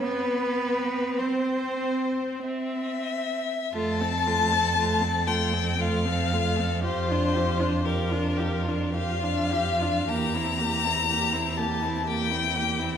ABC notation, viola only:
X:1
M:3/4
L:1/16
Q:1/4=58
K:F
V:1 name="Viola"
C8 C4 | A, C A, C A, C A, C A, C A, C | F D F D F D F D F D F D | B, C B, C B, C B, C B, C B, C |]